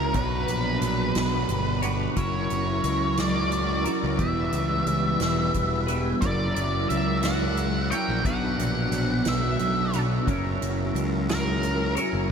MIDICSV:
0, 0, Header, 1, 6, 480
1, 0, Start_track
1, 0, Tempo, 675676
1, 102, Time_signature, 6, 3, 24, 8
1, 8749, End_track
2, 0, Start_track
2, 0, Title_t, "Lead electric guitar"
2, 0, Program_c, 0, 29
2, 0, Note_on_c, 0, 70, 90
2, 107, Note_off_c, 0, 70, 0
2, 110, Note_on_c, 0, 71, 100
2, 1274, Note_off_c, 0, 71, 0
2, 1544, Note_on_c, 0, 73, 96
2, 2269, Note_off_c, 0, 73, 0
2, 2272, Note_on_c, 0, 74, 103
2, 2716, Note_off_c, 0, 74, 0
2, 2979, Note_on_c, 0, 76, 109
2, 3910, Note_off_c, 0, 76, 0
2, 4415, Note_on_c, 0, 74, 80
2, 4645, Note_off_c, 0, 74, 0
2, 4654, Note_on_c, 0, 74, 80
2, 4892, Note_off_c, 0, 74, 0
2, 4895, Note_on_c, 0, 76, 78
2, 5141, Note_on_c, 0, 78, 94
2, 5143, Note_off_c, 0, 76, 0
2, 5617, Note_off_c, 0, 78, 0
2, 5620, Note_on_c, 0, 79, 89
2, 5866, Note_off_c, 0, 79, 0
2, 5869, Note_on_c, 0, 78, 103
2, 6595, Note_on_c, 0, 76, 83
2, 6605, Note_off_c, 0, 78, 0
2, 7098, Note_off_c, 0, 76, 0
2, 8027, Note_on_c, 0, 70, 97
2, 8474, Note_off_c, 0, 70, 0
2, 8749, End_track
3, 0, Start_track
3, 0, Title_t, "Tonewheel organ"
3, 0, Program_c, 1, 16
3, 0, Note_on_c, 1, 54, 60
3, 0, Note_on_c, 1, 64, 57
3, 0, Note_on_c, 1, 70, 64
3, 89, Note_off_c, 1, 54, 0
3, 89, Note_off_c, 1, 70, 0
3, 91, Note_off_c, 1, 64, 0
3, 110, Note_on_c, 1, 62, 60
3, 111, Note_on_c, 1, 54, 64
3, 122, Note_on_c, 1, 71, 67
3, 1528, Note_off_c, 1, 62, 0
3, 1534, Note_off_c, 1, 71, 0
3, 1535, Note_on_c, 1, 64, 57
3, 1539, Note_on_c, 1, 70, 67
3, 2953, Note_off_c, 1, 54, 0
3, 2963, Note_off_c, 1, 70, 0
3, 2964, Note_on_c, 1, 59, 56
3, 2968, Note_on_c, 1, 71, 69
3, 2972, Note_on_c, 1, 55, 64
3, 4387, Note_off_c, 1, 64, 0
3, 4396, Note_off_c, 1, 59, 0
3, 4398, Note_off_c, 1, 71, 0
3, 4400, Note_off_c, 1, 55, 0
3, 4414, Note_on_c, 1, 54, 62
3, 4415, Note_on_c, 1, 64, 59
3, 4415, Note_on_c, 1, 70, 64
3, 5842, Note_off_c, 1, 64, 0
3, 5842, Note_off_c, 1, 70, 0
3, 5848, Note_on_c, 1, 62, 57
3, 5848, Note_on_c, 1, 71, 65
3, 7268, Note_off_c, 1, 54, 0
3, 7278, Note_off_c, 1, 71, 0
3, 7279, Note_off_c, 1, 62, 0
3, 7286, Note_on_c, 1, 61, 55
3, 7289, Note_on_c, 1, 54, 62
3, 7293, Note_on_c, 1, 70, 66
3, 7294, Note_on_c, 1, 64, 55
3, 8718, Note_off_c, 1, 61, 0
3, 8719, Note_off_c, 1, 54, 0
3, 8721, Note_off_c, 1, 64, 0
3, 8721, Note_off_c, 1, 70, 0
3, 8728, Note_on_c, 1, 55, 63
3, 8749, Note_off_c, 1, 55, 0
3, 8749, End_track
4, 0, Start_track
4, 0, Title_t, "Clean electric guitar"
4, 0, Program_c, 2, 27
4, 0, Note_on_c, 2, 54, 70
4, 0, Note_on_c, 2, 61, 65
4, 0, Note_on_c, 2, 64, 78
4, 0, Note_on_c, 2, 70, 70
4, 0, Note_on_c, 2, 73, 84
4, 83, Note_off_c, 2, 70, 0
4, 88, Note_off_c, 2, 64, 0
4, 90, Note_on_c, 2, 47, 83
4, 91, Note_off_c, 2, 54, 0
4, 94, Note_on_c, 2, 54, 95
4, 95, Note_off_c, 2, 61, 0
4, 98, Note_on_c, 2, 59, 84
4, 106, Note_on_c, 2, 62, 85
4, 111, Note_off_c, 2, 73, 0
4, 111, Note_on_c, 2, 66, 95
4, 114, Note_on_c, 2, 73, 110
4, 1278, Note_off_c, 2, 47, 0
4, 1280, Note_off_c, 2, 54, 0
4, 1282, Note_off_c, 2, 59, 0
4, 1286, Note_off_c, 2, 73, 0
4, 1287, Note_off_c, 2, 62, 0
4, 1289, Note_off_c, 2, 66, 0
4, 1295, Note_on_c, 2, 73, 85
4, 1300, Note_on_c, 2, 66, 80
4, 1304, Note_on_c, 2, 62, 73
4, 1311, Note_on_c, 2, 59, 71
4, 1314, Note_on_c, 2, 54, 61
4, 1322, Note_on_c, 2, 47, 64
4, 1522, Note_off_c, 2, 73, 0
4, 1524, Note_off_c, 2, 66, 0
4, 1525, Note_off_c, 2, 54, 0
4, 1526, Note_off_c, 2, 62, 0
4, 1530, Note_off_c, 2, 59, 0
4, 1534, Note_on_c, 2, 54, 92
4, 1535, Note_off_c, 2, 47, 0
4, 1546, Note_on_c, 2, 61, 84
4, 1553, Note_on_c, 2, 64, 104
4, 1557, Note_on_c, 2, 70, 93
4, 2720, Note_off_c, 2, 54, 0
4, 2722, Note_off_c, 2, 70, 0
4, 2726, Note_off_c, 2, 61, 0
4, 2730, Note_on_c, 2, 70, 84
4, 2738, Note_off_c, 2, 64, 0
4, 2741, Note_on_c, 2, 64, 76
4, 2749, Note_on_c, 2, 61, 72
4, 2753, Note_on_c, 2, 54, 70
4, 2959, Note_off_c, 2, 70, 0
4, 2969, Note_off_c, 2, 61, 0
4, 2970, Note_on_c, 2, 52, 94
4, 2971, Note_off_c, 2, 54, 0
4, 2978, Note_on_c, 2, 55, 91
4, 2981, Note_on_c, 2, 59, 85
4, 2985, Note_off_c, 2, 64, 0
4, 2988, Note_on_c, 2, 64, 95
4, 2994, Note_on_c, 2, 71, 91
4, 4159, Note_off_c, 2, 52, 0
4, 4160, Note_off_c, 2, 71, 0
4, 4163, Note_off_c, 2, 55, 0
4, 4164, Note_off_c, 2, 59, 0
4, 4168, Note_off_c, 2, 64, 0
4, 4169, Note_on_c, 2, 71, 79
4, 4179, Note_on_c, 2, 64, 77
4, 4183, Note_on_c, 2, 59, 74
4, 4191, Note_on_c, 2, 55, 71
4, 4194, Note_on_c, 2, 52, 61
4, 4398, Note_off_c, 2, 71, 0
4, 4404, Note_off_c, 2, 64, 0
4, 4405, Note_off_c, 2, 59, 0
4, 4410, Note_off_c, 2, 55, 0
4, 4411, Note_off_c, 2, 52, 0
4, 4413, Note_on_c, 2, 54, 90
4, 4425, Note_on_c, 2, 61, 79
4, 4431, Note_on_c, 2, 64, 98
4, 4434, Note_on_c, 2, 70, 92
4, 4440, Note_on_c, 2, 73, 95
4, 5610, Note_off_c, 2, 64, 0
4, 5611, Note_off_c, 2, 70, 0
4, 5614, Note_off_c, 2, 73, 0
4, 5617, Note_on_c, 2, 73, 85
4, 5625, Note_on_c, 2, 70, 70
4, 5629, Note_off_c, 2, 61, 0
4, 5630, Note_on_c, 2, 64, 65
4, 5632, Note_on_c, 2, 61, 78
4, 5639, Note_off_c, 2, 54, 0
4, 5641, Note_on_c, 2, 54, 73
4, 5846, Note_off_c, 2, 70, 0
4, 5849, Note_off_c, 2, 64, 0
4, 5861, Note_on_c, 2, 47, 79
4, 5862, Note_off_c, 2, 54, 0
4, 5865, Note_on_c, 2, 54, 90
4, 5868, Note_off_c, 2, 61, 0
4, 5871, Note_on_c, 2, 59, 95
4, 5877, Note_on_c, 2, 62, 95
4, 5880, Note_on_c, 2, 66, 100
4, 5882, Note_off_c, 2, 73, 0
4, 5885, Note_on_c, 2, 73, 92
4, 7045, Note_off_c, 2, 47, 0
4, 7047, Note_off_c, 2, 54, 0
4, 7050, Note_off_c, 2, 59, 0
4, 7053, Note_off_c, 2, 62, 0
4, 7054, Note_off_c, 2, 66, 0
4, 7055, Note_off_c, 2, 73, 0
4, 7063, Note_on_c, 2, 73, 83
4, 7068, Note_on_c, 2, 66, 76
4, 7074, Note_on_c, 2, 59, 77
4, 7075, Note_on_c, 2, 62, 86
4, 7083, Note_on_c, 2, 54, 67
4, 7084, Note_on_c, 2, 47, 73
4, 7286, Note_off_c, 2, 73, 0
4, 7288, Note_off_c, 2, 66, 0
4, 7290, Note_off_c, 2, 54, 0
4, 7291, Note_off_c, 2, 59, 0
4, 7292, Note_off_c, 2, 62, 0
4, 7297, Note_off_c, 2, 47, 0
4, 7298, Note_on_c, 2, 54, 88
4, 7304, Note_on_c, 2, 61, 92
4, 7310, Note_on_c, 2, 64, 98
4, 7320, Note_on_c, 2, 70, 99
4, 7325, Note_on_c, 2, 73, 94
4, 8484, Note_off_c, 2, 54, 0
4, 8484, Note_off_c, 2, 73, 0
4, 8486, Note_off_c, 2, 61, 0
4, 8490, Note_off_c, 2, 64, 0
4, 8492, Note_off_c, 2, 70, 0
4, 8492, Note_on_c, 2, 73, 83
4, 8501, Note_on_c, 2, 70, 76
4, 8508, Note_on_c, 2, 64, 75
4, 8513, Note_on_c, 2, 61, 74
4, 8519, Note_on_c, 2, 54, 66
4, 8721, Note_off_c, 2, 73, 0
4, 8725, Note_off_c, 2, 70, 0
4, 8727, Note_off_c, 2, 54, 0
4, 8728, Note_off_c, 2, 64, 0
4, 8731, Note_off_c, 2, 61, 0
4, 8749, End_track
5, 0, Start_track
5, 0, Title_t, "Picked electric bass"
5, 0, Program_c, 3, 34
5, 0, Note_on_c, 3, 37, 83
5, 87, Note_off_c, 3, 37, 0
5, 106, Note_on_c, 3, 35, 105
5, 309, Note_off_c, 3, 35, 0
5, 338, Note_on_c, 3, 34, 80
5, 545, Note_off_c, 3, 34, 0
5, 579, Note_on_c, 3, 34, 83
5, 785, Note_off_c, 3, 34, 0
5, 820, Note_on_c, 3, 35, 83
5, 1025, Note_off_c, 3, 35, 0
5, 1057, Note_on_c, 3, 31, 87
5, 1469, Note_off_c, 3, 31, 0
5, 1545, Note_on_c, 3, 30, 101
5, 1748, Note_off_c, 3, 30, 0
5, 1781, Note_on_c, 3, 30, 82
5, 1986, Note_off_c, 3, 30, 0
5, 2016, Note_on_c, 3, 37, 88
5, 2738, Note_off_c, 3, 37, 0
5, 2867, Note_on_c, 3, 37, 89
5, 2966, Note_off_c, 3, 37, 0
5, 2976, Note_on_c, 3, 28, 91
5, 3182, Note_off_c, 3, 28, 0
5, 3218, Note_on_c, 3, 37, 79
5, 3423, Note_off_c, 3, 37, 0
5, 3455, Note_on_c, 3, 37, 85
5, 3662, Note_off_c, 3, 37, 0
5, 3698, Note_on_c, 3, 28, 82
5, 3904, Note_off_c, 3, 28, 0
5, 3942, Note_on_c, 3, 28, 82
5, 4352, Note_off_c, 3, 28, 0
5, 4421, Note_on_c, 3, 30, 98
5, 4625, Note_off_c, 3, 30, 0
5, 4660, Note_on_c, 3, 30, 79
5, 4865, Note_off_c, 3, 30, 0
5, 4907, Note_on_c, 3, 37, 87
5, 5625, Note_off_c, 3, 37, 0
5, 5745, Note_on_c, 3, 34, 85
5, 5845, Note_off_c, 3, 34, 0
5, 5858, Note_on_c, 3, 35, 103
5, 6064, Note_off_c, 3, 35, 0
5, 6100, Note_on_c, 3, 34, 84
5, 6305, Note_off_c, 3, 34, 0
5, 6335, Note_on_c, 3, 34, 88
5, 6542, Note_off_c, 3, 34, 0
5, 6586, Note_on_c, 3, 35, 87
5, 6788, Note_off_c, 3, 35, 0
5, 6821, Note_on_c, 3, 35, 88
5, 7232, Note_off_c, 3, 35, 0
5, 7302, Note_on_c, 3, 30, 103
5, 7506, Note_off_c, 3, 30, 0
5, 7541, Note_on_c, 3, 30, 85
5, 7746, Note_off_c, 3, 30, 0
5, 7774, Note_on_c, 3, 37, 81
5, 8497, Note_off_c, 3, 37, 0
5, 8618, Note_on_c, 3, 30, 88
5, 8721, Note_off_c, 3, 30, 0
5, 8749, End_track
6, 0, Start_track
6, 0, Title_t, "Drums"
6, 100, Note_on_c, 9, 42, 76
6, 104, Note_on_c, 9, 36, 103
6, 171, Note_off_c, 9, 42, 0
6, 175, Note_off_c, 9, 36, 0
6, 341, Note_on_c, 9, 42, 61
6, 412, Note_off_c, 9, 42, 0
6, 580, Note_on_c, 9, 42, 65
6, 651, Note_off_c, 9, 42, 0
6, 817, Note_on_c, 9, 42, 84
6, 825, Note_on_c, 9, 38, 106
6, 888, Note_off_c, 9, 42, 0
6, 896, Note_off_c, 9, 38, 0
6, 1056, Note_on_c, 9, 42, 55
6, 1127, Note_off_c, 9, 42, 0
6, 1296, Note_on_c, 9, 42, 64
6, 1367, Note_off_c, 9, 42, 0
6, 1537, Note_on_c, 9, 42, 86
6, 1540, Note_on_c, 9, 36, 101
6, 1608, Note_off_c, 9, 42, 0
6, 1611, Note_off_c, 9, 36, 0
6, 1777, Note_on_c, 9, 42, 58
6, 1848, Note_off_c, 9, 42, 0
6, 2015, Note_on_c, 9, 42, 62
6, 2086, Note_off_c, 9, 42, 0
6, 2255, Note_on_c, 9, 42, 78
6, 2263, Note_on_c, 9, 38, 108
6, 2326, Note_off_c, 9, 42, 0
6, 2334, Note_off_c, 9, 38, 0
6, 2498, Note_on_c, 9, 42, 52
6, 2569, Note_off_c, 9, 42, 0
6, 2737, Note_on_c, 9, 42, 59
6, 2808, Note_off_c, 9, 42, 0
6, 2974, Note_on_c, 9, 42, 79
6, 2977, Note_on_c, 9, 36, 99
6, 3045, Note_off_c, 9, 42, 0
6, 3048, Note_off_c, 9, 36, 0
6, 3214, Note_on_c, 9, 42, 57
6, 3285, Note_off_c, 9, 42, 0
6, 3456, Note_on_c, 9, 42, 55
6, 3527, Note_off_c, 9, 42, 0
6, 3692, Note_on_c, 9, 42, 77
6, 3700, Note_on_c, 9, 38, 98
6, 3763, Note_off_c, 9, 42, 0
6, 3771, Note_off_c, 9, 38, 0
6, 3937, Note_on_c, 9, 42, 50
6, 3941, Note_on_c, 9, 36, 65
6, 4009, Note_off_c, 9, 42, 0
6, 4012, Note_off_c, 9, 36, 0
6, 4178, Note_on_c, 9, 42, 59
6, 4249, Note_off_c, 9, 42, 0
6, 4416, Note_on_c, 9, 42, 82
6, 4420, Note_on_c, 9, 36, 97
6, 4487, Note_off_c, 9, 42, 0
6, 4491, Note_off_c, 9, 36, 0
6, 4661, Note_on_c, 9, 42, 62
6, 4732, Note_off_c, 9, 42, 0
6, 4902, Note_on_c, 9, 42, 59
6, 4973, Note_off_c, 9, 42, 0
6, 5133, Note_on_c, 9, 42, 85
6, 5141, Note_on_c, 9, 38, 108
6, 5204, Note_off_c, 9, 42, 0
6, 5212, Note_off_c, 9, 38, 0
6, 5379, Note_on_c, 9, 42, 54
6, 5450, Note_off_c, 9, 42, 0
6, 5623, Note_on_c, 9, 42, 64
6, 5694, Note_off_c, 9, 42, 0
6, 5861, Note_on_c, 9, 36, 110
6, 5862, Note_on_c, 9, 42, 84
6, 5932, Note_off_c, 9, 36, 0
6, 5933, Note_off_c, 9, 42, 0
6, 6105, Note_on_c, 9, 42, 63
6, 6176, Note_off_c, 9, 42, 0
6, 6336, Note_on_c, 9, 42, 59
6, 6407, Note_off_c, 9, 42, 0
6, 6571, Note_on_c, 9, 42, 78
6, 6579, Note_on_c, 9, 38, 103
6, 6642, Note_off_c, 9, 42, 0
6, 6650, Note_off_c, 9, 38, 0
6, 6814, Note_on_c, 9, 42, 57
6, 6885, Note_off_c, 9, 42, 0
6, 7056, Note_on_c, 9, 42, 57
6, 7127, Note_off_c, 9, 42, 0
6, 7299, Note_on_c, 9, 36, 99
6, 7301, Note_on_c, 9, 42, 80
6, 7370, Note_off_c, 9, 36, 0
6, 7372, Note_off_c, 9, 42, 0
6, 7545, Note_on_c, 9, 42, 59
6, 7616, Note_off_c, 9, 42, 0
6, 7785, Note_on_c, 9, 42, 57
6, 7856, Note_off_c, 9, 42, 0
6, 8021, Note_on_c, 9, 42, 71
6, 8029, Note_on_c, 9, 38, 104
6, 8092, Note_off_c, 9, 42, 0
6, 8100, Note_off_c, 9, 38, 0
6, 8261, Note_on_c, 9, 42, 50
6, 8332, Note_off_c, 9, 42, 0
6, 8500, Note_on_c, 9, 42, 64
6, 8571, Note_off_c, 9, 42, 0
6, 8749, End_track
0, 0, End_of_file